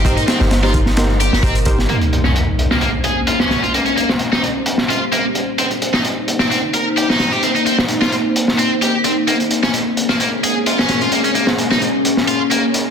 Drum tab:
HH |xxx-x-x-x-x-xxx-|xxx-x-x-x-x-x-xx|xxx-x-x-x-x-x-x-|xxx-x-x-x-x-x-xx|
SD |--oooo-oo--o---o|---o---o-----oo-|---o-o---o------|---o---o-----oo-|
BD |o-----o-----o-o-|----------------|----------------|----------------|

HH |xxx-x-x-x-x-x-x-|xxx-x-x-x-x-x-xx|xxx-x-x-x-x-x-x-|
SD |---o-o---o------|---o---o-----oo-|---o-o---o------|
BD |----------------|----------------|----------------|